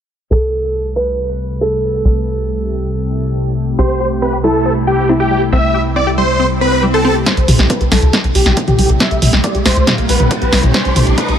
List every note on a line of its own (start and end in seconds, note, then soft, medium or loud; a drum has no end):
0.31 2.02 C2 medium
0.31 7.22 C3 medium
0.31 7.22 G3 medium
0.31 7.22 A3 medium
0.31 7.22 E4 medium
0.31 7.22 G4 medium
0.31 0.87 A4 medium
0.96 1.53 B4 medium
1.61 3.70 A4 medium
2.05 3.76 C2 medium
3.79 5.50 C2 medium
3.79 3.83 C4 loud
3.79 4.35 G4 medium
3.79 4.07 C5 loud
4.00 4.03 G4 medium
4.22 4.27 C4 medium
4.22 4.36 B4 medium
4.33 4.38 G4 medium
4.44 4.48 G3 medium
4.44 5.00 E4 medium
4.44 4.72 A4 medium
4.66 4.70 C4 medium
4.87 5.09 G4 loud
4.87 4.90 G4 medium
5.09 5.14 C4 medium
5.09 7.18 E4 medium
5.20 5.25 G4 medium
5.20 5.41 G4 medium
5.31 5.35 G3 medium
5.52 7.24 C2 medium
5.52 5.57 C4 medium
5.52 5.81 E5 loud
5.74 5.77 G4 medium
5.96 6.01 C4 medium
5.96 6.10 D5 medium
6.07 6.11 G4 medium
6.18 6.22 G3 medium
6.18 6.46 C5 medium
6.39 6.44 C4 loud
6.39 swell medium
6.61 6.66 C4 medium
6.61 6.83 B4 medium
6.72 6.77 C4 medium
6.83 6.86 G3 medium
6.94 7.15 A4 medium
6.94 6.98 C5 medium
7.05 7.07 C4 loud
7.26 11.39 C3 medium
7.26 11.39 G3 medium
7.26 11.39 A3 medium
7.26 7.31 C4 loud
7.26 11.39 E4 medium
7.26 11.39 G4 medium
7.26 7.55 C5 loud
7.26 kick loud
7.26 snare soft
7.26 closed hi-hat medium
7.26 riser medium
7.37 7.46 C2 medium
7.37 closed hi-hat soft
7.48 7.57 C2 medium
7.48 7.51 G4 medium
7.48 open hi-hat loud
7.48 mid tom medium
7.59 7.68 C2 medium
7.59 snare soft
7.59 closed hi-hat soft
7.70 7.74 C4 medium
7.70 7.84 B4 medium
7.70 kick loud
7.70 closed hi-hat medium
7.81 7.89 C2 medium
7.81 7.85 G4 medium
7.81 closed hi-hat soft
7.92 8.00 C2 medium
7.92 7.96 G3 medium
7.92 8.20 A4 medium
7.92 kick medium
7.92 snare soft
7.92 open hi-hat loud
8.02 8.11 D2 medium
8.02 closed hi-hat soft
8.13 8.18 C4 loud
8.13 kick loud
8.13 snare medium
8.13 closed hi-hat loud
8.24 8.33 C2 medium
8.24 closed hi-hat soft
8.35 8.44 C2 loud
8.35 8.38 G4 medium
8.35 8.57 G4 medium
8.35 open hi-hat loud
8.46 8.55 C2 medium
8.46 snare soft
8.46 closed hi-hat soft
8.57 8.61 C4 medium
8.57 kick loud
8.57 closed hi-hat medium
8.68 8.76 C2 medium
8.68 8.72 G4 medium
8.68 8.89 G4 medium
8.68 closed hi-hat soft
8.68 mid tom medium
8.79 8.87 C2 medium
8.79 8.83 G3 medium
8.79 open hi-hat medium
8.89 8.98 C2 medium
8.89 closed hi-hat soft
9.00 9.05 C4 loud
9.00 9.29 E5 loud
9.00 kick loud
9.00 snare soft
9.00 closed hi-hat medium
9.11 9.20 C2 medium
9.11 closed hi-hat soft
9.22 9.31 C2 loud
9.22 9.25 G4 medium
9.22 open hi-hat loud
9.22 mid tom medium
9.33 9.42 C2 medium
9.33 snare soft
9.33 closed hi-hat soft
9.44 9.48 C4 medium
9.44 9.58 D5 medium
9.44 kick loud
9.44 closed hi-hat medium
9.55 9.63 C2 medium
9.55 9.59 G4 medium
9.55 closed hi-hat soft
9.66 9.74 C2 loud
9.66 9.70 G3 medium
9.66 9.94 C5 medium
9.66 snare medium
9.66 open hi-hat loud
9.76 9.85 D2 medium
9.76 closed hi-hat soft
9.87 9.92 C4 loud
9.87 kick loud
9.87 snare medium
9.87 closed hi-hat medium
9.87 mid tom medium
9.98 10.07 C2 medium
9.98 closed hi-hat soft
10.09 10.18 C2 loud
10.09 10.12 G4 medium
10.09 10.30 B4 medium
10.09 open hi-hat loud
10.20 10.29 C2 medium
10.20 closed hi-hat soft
10.20 mid tom medium
10.31 10.35 C4 medium
10.31 kick loud
10.31 closed hi-hat medium
10.42 10.50 C2 medium
10.42 10.46 G4 medium
10.42 10.63 B4 medium
10.42 closed hi-hat soft
10.53 10.61 C2 medium
10.53 10.57 G3 medium
10.53 snare medium
10.53 open hi-hat medium
10.63 10.72 C2 medium
10.63 closed hi-hat soft
10.63 mid tom medium
10.74 10.79 C4 loud
10.74 11.03 C5 loud
10.74 kick loud
10.74 snare medium
10.74 closed hi-hat medium
10.85 10.94 C2 medium
10.85 closed hi-hat soft
10.96 11.05 C2 loud
10.96 10.99 G4 medium
10.96 open hi-hat loud
10.96 mid tom medium
11.07 11.16 C2 medium
11.07 closed hi-hat soft
11.18 11.22 C4 medium
11.18 11.32 B4 medium
11.18 kick loud
11.18 closed hi-hat medium
11.29 11.37 C2 medium
11.29 11.33 G4 medium
11.29 closed hi-hat soft